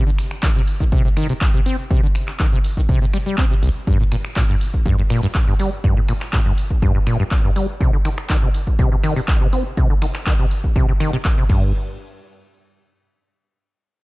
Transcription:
0.07 0.10 D3 medium
0.18 finger snap medium
0.18 open hi-hat loud
0.18 shaker loud
0.30 finger snap medium
0.30 shaker medium
0.43 0.50 D#3 medium
0.43 kick loud
0.43 clap loud
0.43 shaker soft
0.56 0.62 C3 medium
0.67 open hi-hat loud
0.67 shaker medium
0.80 0.84 D#3 medium
0.80 kick medium
0.80 shaker medium
0.92 1.03 C3 loud
0.92 kick loud
0.92 shaker soft
1.05 1.09 C3 medium
1.16 1.27 D#3 loud
1.16 finger snap medium
1.16 open hi-hat loud
1.16 shaker loud
1.29 1.33 C3 loud
1.29 open hi-hat medium
1.29 shaker medium
1.41 kick loud
1.41 clap loud
1.41 shaker soft
1.54 1.61 C3 medium
1.66 1.76 C4 medium
1.66 open hi-hat loud
1.66 shaker medium
1.79 shaker medium
1.90 2.01 C3 loud
1.90 kick loud
1.90 shaker soft
2.03 2.07 D3 medium
2.15 finger snap medium
2.15 open hi-hat loud
2.15 shaker loud
2.28 finger snap medium
2.28 clap soft
2.28 shaker medium
2.40 2.47 D#3 medium
2.40 kick loud
2.40 clap loud
2.40 shaker soft
2.52 2.59 C3 medium
2.64 open hi-hat loud
2.64 shaker loud
2.77 2.81 D#3 medium
2.77 kick medium
2.77 shaker medium
2.89 2.99 C3 loud
2.89 kick loud
2.89 shaker soft
3.02 3.06 C3 medium
3.13 3.18 G3 medium
3.13 finger snap medium
3.13 open hi-hat loud
3.13 shaker loud
3.26 3.36 G3 medium
3.26 shaker medium
3.38 3.45 C4 loud
3.38 kick loud
3.38 clap loud
3.38 shaker soft
3.51 3.55 C3 medium
3.62 3.70 C2 loud
3.62 open hi-hat loud
3.62 shaker loud
3.76 shaker soft
3.87 3.98 G2 loud
3.87 kick loud
3.87 shaker soft
4.00 4.04 A2 medium
4.12 4.16 A#2 medium
4.12 finger snap medium
4.12 open hi-hat loud
4.12 shaker medium
4.25 finger snap medium
4.25 shaker medium
4.36 4.44 A#2 medium
4.36 kick loud
4.36 clap loud
4.36 shaker soft
4.49 4.56 G2 medium
4.61 open hi-hat loud
4.61 shaker loud
4.74 kick medium
4.74 shaker soft
4.86 4.96 G2 loud
4.86 kick loud
4.86 shaker soft
4.99 5.02 G2 medium
5.10 5.21 A#2 loud
5.10 finger snap medium
5.10 open hi-hat loud
5.10 shaker loud
5.23 5.27 G2 loud
5.23 open hi-hat medium
5.23 shaker medium
5.35 kick loud
5.35 clap loud
5.35 shaker soft
5.48 5.54 G2 medium
5.59 5.70 G3 medium
5.59 open hi-hat loud
5.59 shaker medium
5.72 shaker soft
5.84 5.95 G2 loud
5.84 kick loud
5.84 shaker soft
5.97 6.01 A2 medium
6.09 6.13 A#2 medium
6.09 finger snap medium
6.09 open hi-hat loud
6.09 shaker medium
6.21 finger snap medium
6.21 clap soft
6.21 shaker soft
6.33 6.40 A#2 medium
6.33 kick loud
6.33 clap loud
6.33 shaker soft
6.46 6.52 G2 medium
6.58 open hi-hat loud
6.58 shaker medium
6.70 kick medium
6.70 shaker soft
6.82 6.93 G2 loud
6.82 kick loud
6.82 shaker soft
6.95 6.99 G2 medium
7.07 7.17 A#2 loud
7.07 finger snap medium
7.07 open hi-hat loud
7.07 shaker medium
7.19 7.24 G2 loud
7.19 shaker medium
7.31 kick loud
7.31 clap loud
7.31 shaker soft
7.44 7.51 G2 medium
7.56 7.67 G3 medium
7.56 open hi-hat loud
7.56 shaker medium
7.69 shaker soft
7.81 7.91 C3 loud
7.81 kick loud
7.81 shaker soft
7.93 7.97 D3 medium
8.05 8.09 D#3 medium
8.05 finger snap medium
8.05 open hi-hat loud
8.05 shaker medium
8.18 finger snap medium
8.18 shaker soft
8.30 8.37 D#3 medium
8.30 kick loud
8.30 clap loud
8.30 shaker soft
8.42 8.49 C3 medium
8.54 open hi-hat loud
8.54 shaker medium
8.67 kick medium
8.67 shaker soft
8.79 8.90 C3 loud
8.79 kick loud
8.79 shaker soft
8.92 8.96 C3 medium
9.04 9.14 D#3 loud
9.04 finger snap medium
9.04 open hi-hat loud
9.04 shaker medium
9.16 9.20 C3 loud
9.16 open hi-hat medium
9.16 shaker medium
9.28 kick loud
9.28 clap loud
9.28 shaker soft
9.41 9.47 C3 medium
9.53 9.63 C4 medium
9.53 open hi-hat loud
9.53 shaker medium
9.65 shaker soft
9.77 9.88 C3 loud
9.77 kick loud
9.77 shaker soft
9.90 9.94 D3 medium
10.02 10.06 D#3 medium
10.02 finger snap medium
10.02 open hi-hat loud
10.02 shaker medium
10.15 finger snap medium
10.15 clap soft
10.15 shaker soft
10.26 10.34 D#3 medium
10.26 kick loud
10.26 clap loud
10.26 shaker soft
10.39 10.46 C3 medium
10.51 open hi-hat loud
10.51 shaker medium
10.64 kick medium
10.64 shaker medium
10.74 10.86 C3 loud
10.74 kick loud
10.74 shaker soft
10.89 10.92 C3 medium
11.00 11.11 D#3 loud
11.00 finger snap medium
11.00 open hi-hat loud
11.00 shaker medium
11.13 11.17 C3 loud
11.13 shaker medium
11.25 kick loud
11.25 clap loud
11.25 shaker soft
11.38 11.44 C3 medium
11.49 11.72 G2 medium
11.49 kick loud
11.49 crash medium
11.49 shaker loud
11.62 shaker medium

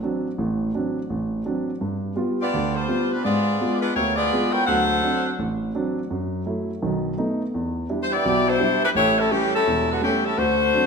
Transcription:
0.03 0.26 F#3 soft
0.03 0.27 C4 soft
0.03 0.27 D4 medium
0.38 0.69 A1 medium
0.38 0.69 A2 medium
0.74 0.98 F#3 soft
0.74 0.98 C4 soft
0.74 0.98 D4 medium
1.10 1.41 A1 medium
1.46 1.69 F#3 soft
1.46 1.69 C4 soft
1.46 1.69 D4 soft
1.81 2.12 G2 medium
2.16 2.40 G3 soft
2.16 2.40 B3 soft
2.16 2.40 F4 medium
2.40 2.73 B3 medium
2.40 2.73 F4 medium
2.40 2.73 G4 medium
2.40 2.73 D5 medium
2.53 2.84 D2 medium
2.53 2.84 D3 medium
2.75 3.11 G3 medium
2.75 3.11 D4 medium
2.75 3.11 F4 medium
2.75 3.11 C5 medium
2.88 3.12 G3 soft
2.88 3.12 B3 soft
2.88 3.13 F4 medium
3.12 3.25 G3 medium
3.12 3.25 D4 medium
3.12 3.23 F4 medium
3.12 3.25 B4 medium
3.24 3.55 G#2 medium
3.24 3.78 B3 medium
3.24 3.78 F4 medium
3.24 3.78 G#4 medium
3.24 3.78 D5 medium
3.60 3.84 G#3 soft
3.60 3.84 B3 soft
3.60 3.84 F4 medium
3.80 3.94 G#3 medium
3.80 3.94 D4 medium
3.80 3.94 F4 medium
3.80 3.94 B4 medium
3.94 4.26 D2 medium
3.94 4.16 A#3 medium
3.94 4.16 E4 medium
3.94 4.16 G4 medium
3.94 4.16 C#5 medium
4.16 4.50 B3 medium
4.16 4.50 F4 medium
4.16 4.50 G#4 medium
4.16 4.50 D5 medium
4.32 4.55 G#3 soft
4.32 4.56 B3 soft
4.32 4.56 F4 medium
4.52 4.66 E4 medium
4.52 4.66 A#4 medium
4.52 4.66 C#5 medium
4.52 4.66 G5 medium
4.66 4.98 D2 medium
4.66 4.98 F#3 medium
4.66 5.34 D4 medium
4.66 5.34 A4 medium
4.66 5.34 C5 medium
4.66 5.34 F#5 medium
5.03 5.27 F#3 soft
5.03 5.27 C4 soft
5.03 5.27 D4 medium
5.39 5.69 A1 medium
5.75 5.98 F#3 soft
5.75 5.98 C4 soft
5.75 5.98 D4 medium
6.11 6.41 F#2 medium
6.46 6.69 F#3 soft
6.46 6.70 A3 soft
6.46 6.70 E4 medium
6.82 7.13 B1 medium
6.82 7.13 D#3 medium
7.17 7.41 A3 soft
7.17 7.41 B3 soft
7.17 7.41 D#4 soft
7.54 7.84 E2 medium
7.89 8.13 G3 soft
7.89 8.13 D4 soft
7.89 8.13 E4 medium
8.02 8.11 C5 medium
8.12 8.47 B3 medium
8.12 8.47 E4 medium
8.12 8.47 G4 medium
8.12 8.47 D5 medium
8.25 8.55 B1 medium
8.25 8.55 B2 medium
8.48 8.82 G3 medium
8.48 8.82 D4 medium
8.48 8.82 E4 medium
8.48 8.83 C5 medium
8.59 8.83 G3 soft
8.59 8.83 D4 soft
8.59 8.84 E4 medium
8.83 8.89 G3 medium
8.83 8.89 D4 medium
8.83 8.89 E4 medium
8.83 8.89 B4 medium
8.95 9.26 A1 medium
8.95 9.17 A3 medium
8.95 9.17 E4 medium
8.95 9.17 G4 medium
8.95 9.17 C#5 medium
9.18 9.31 G3 medium
9.18 9.30 C#4 medium
9.18 9.31 E4 medium
9.18 9.31 A4 medium
9.31 9.54 E3 medium
9.31 9.55 G3 soft
9.31 9.53 A3 medium
9.31 9.55 A3 soft
9.31 9.53 C#4 medium
9.31 9.55 C#4 soft
9.31 9.54 G4 medium
9.54 9.87 G3 medium
9.54 9.87 C#4 medium
9.54 9.87 E4 medium
9.54 9.87 A4 medium
9.67 9.97 E1 medium
9.67 9.98 E2 medium
9.91 10.03 D3 medium
9.91 10.03 G3 medium
9.91 10.03 B3 medium
9.91 10.03 F#4 medium
10.01 10.24 E3 medium
10.01 10.26 G3 soft
10.01 10.26 A3 soft
10.01 10.24 A3 medium
10.01 10.26 C#4 soft
10.01 10.23 C#4 medium
10.01 10.24 G4 medium
10.24 10.38 G3 medium
10.24 10.38 C#4 medium
10.24 10.38 E4 medium
10.24 10.38 A4 medium
10.37 10.68 D2 medium
10.37 10.87 A3 medium
10.37 10.87 D4 medium
10.37 10.87 F#4 medium
10.37 10.87 C5 loud
10.74 10.87 F#3 soft
10.74 10.87 C4 soft
10.74 10.87 D4 soft

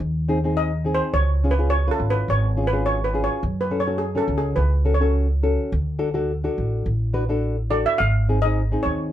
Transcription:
0.00 0.98 D#2 medium
0.28 0.38 C4 medium
0.28 0.38 D#4 medium
0.28 0.38 G#4 medium
0.44 0.70 C4 medium
0.44 0.70 D#4 medium
0.44 0.70 G#4 medium
0.57 0.96 D#5 medium
0.84 1.14 C4 medium
0.84 1.14 D#4 medium
0.84 1.14 G#4 medium
0.95 1.15 C5 medium
1.13 1.87 C#2 medium
1.13 1.53 C#5 medium
1.44 1.53 C#4 medium
1.44 1.53 F4 medium
1.44 1.53 G#4 medium
1.51 1.71 B4 medium
1.59 1.75 C#4 medium
1.59 1.75 F4 medium
1.59 1.75 G#4 medium
1.70 1.89 C#5 medium
1.87 2.29 C#4 medium
1.87 2.29 F4 medium
1.87 2.29 B4 medium
1.91 2.11 A4 medium
2.00 2.24 G#1 medium
2.10 2.28 B4 medium
2.28 3.26 G#1 medium
2.28 2.69 C#5 medium
2.57 2.66 C#4 medium
2.57 2.66 F4 medium
2.57 2.67 G#4 medium
2.67 2.87 B4 medium
2.72 2.98 C#4 medium
2.72 2.98 F4 medium
2.72 2.98 G#4 medium
2.86 3.06 C#5 medium
3.04 3.22 B4 medium
3.14 3.43 C#4 medium
3.14 3.43 F4 medium
3.14 3.43 G#4 medium
3.24 3.63 C#5 medium
3.43 4.16 F#2 medium
3.61 3.79 B4 medium
3.71 3.80 C#4 medium
3.71 3.81 F#4 medium
3.71 3.81 A4 medium
3.80 3.98 C#5 medium
3.87 4.03 C#4 medium
3.87 4.03 F#4 medium
3.87 4.04 A4 medium
3.98 4.19 G#4 medium
4.15 4.57 C#4 medium
4.15 4.58 F#4 medium
4.15 4.58 A4 medium
4.15 4.36 A4 medium
4.28 4.53 C#2 medium
4.38 4.58 G#4 medium
4.56 5.55 C#2 medium
4.56 4.96 B4 medium
4.85 4.95 C#4 medium
4.85 4.95 F#4 medium
4.85 4.95 A4 medium
4.94 5.77 C#5 medium
5.00 5.27 C#4 medium
5.00 5.27 F#4 medium
5.00 5.27 A4 medium
5.43 5.72 C#4 medium
5.43 5.72 F#4 medium
5.43 5.72 A4 medium
5.72 6.46 D2 loud
5.99 6.09 D4 medium
5.99 6.09 F#4 medium
5.99 6.09 A4 medium
6.14 6.31 D4 medium
6.14 6.31 F#4 medium
6.14 6.32 A4 medium
6.44 6.86 D4 medium
6.44 6.86 F#4 medium
6.44 6.86 A4 medium
6.58 6.82 A1 medium
6.86 7.84 A1 medium
7.13 7.23 D4 medium
7.13 7.24 F#4 medium
7.13 7.24 B4 medium
7.29 7.55 D4 medium
7.29 7.55 F#4 medium
7.29 7.55 A4 medium
7.70 8.00 D4 medium
7.70 8.00 F#4 medium
7.70 8.00 A4 medium
7.70 7.87 D5 medium
7.86 8.00 E5 loud
7.98 8.74 G#1 loud
7.98 8.40 F5 loud
8.29 8.38 C4 medium
8.29 8.38 D#4 medium
8.29 8.38 G#4 medium
8.42 8.61 C4 medium
8.42 8.61 D#4 medium
8.42 8.61 G#4 medium
8.42 8.86 D#5 loud
8.72 9.12 C4 medium
8.72 9.12 D#4 medium
8.72 9.12 G#4 medium
8.83 9.10 D#2 medium
8.83 9.12 C#5 medium

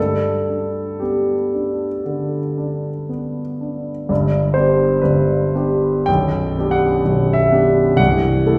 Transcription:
0.00 2.02 G2 soft
0.00 1.00 A4 medium
0.50 1.33 D4 soft
1.00 1.85 B3 soft
1.00 3.09 G4 soft
1.54 2.37 D4 soft
2.05 2.89 D3 soft
2.58 3.40 D4 soft
3.09 3.90 B3 soft
3.61 4.10 D4 soft
4.09 4.55 G1 medium
4.09 4.55 G2 medium
4.54 5.00 B3 soft
4.54 5.00 D4 soft
4.54 5.01 G4 soft
4.54 5.03 C5 medium
5.02 5.54 G1 soft
5.02 5.53 G2 soft
5.02 6.06 B4 medium
5.55 6.04 B3 soft
5.55 6.04 D4 soft
5.55 6.04 G4 soft
6.06 6.56 B0 soft
6.06 6.56 B1 medium
6.06 6.72 G5 medium
6.58 7.01 B3 soft
6.58 7.02 D4 soft
6.58 7.02 G4 soft
6.71 7.35 F#5 medium
7.05 7.50 B0 soft
7.05 7.51 B1 soft
7.33 7.97 E5 medium
7.51 7.95 B3 soft
7.51 7.95 D4 soft
7.51 7.95 G4 soft
7.96 8.42 C1 soft
7.96 8.44 C2 medium
7.96 8.59 F#5 medium
8.46 8.59 A3 soft
8.46 8.59 E4 soft
8.46 8.59 A4 soft

